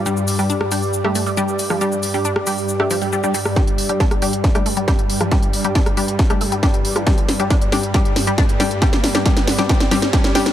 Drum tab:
HH |--o---o---o---o-|--o---o---o---o-|xxoxxxoxxxoxxxox|xxoxxxoxxxoxxxox|
SH |xxxxx-xxx-xxxxxx|xxxxx-xxx-xxxxxx|----------------|----------------|
SD |-----r---r-----r|-----r---r-----r|o---or--or--o--r|o---or--or--o--r|
BD |----------------|----------------|o---o---o---o---|o---o---o---o---|

HH |xxoxxxoxxxoxxxox|xxoxxxoxxxoxxxox|
SH |----------------|----------------|
SD |o-o-o-o-o-o-o-o-|oooooooooooooooo|
BD |o---o---o---o---|o---o---o---o---|